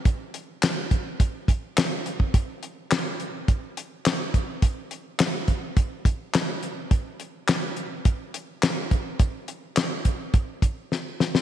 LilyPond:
\new DrumStaff \with { instrumentName = "Drums" } \drummode { \time 4/4 \tempo 4 = 105 <hh bd>8 hh8 <hc hh sn>8 <hh bd>8 <hh bd>8 <hh bd>8 <hc hh sn>8 hh16 bd16 | <hh bd>8 hh8 <hc hh sn>8 hh8 <hh bd>8 hh8 <hc hh sn>8 <hh bd>8 | <hh bd>8 hh8 <hc hh sn>8 <hh bd>8 <hh bd>8 <hh bd>8 <hc hh sn>8 hh8 | <hh bd>8 hh8 <hc hh sn>8 hh8 <hh bd>8 hh8 <hc hh sn>8 <hh bd>8 |
<hh bd>8 hh8 <hc hh sn>8 <hh bd>8 <hh bd>8 <hh bd>8 sn8 sn16 sn16 | }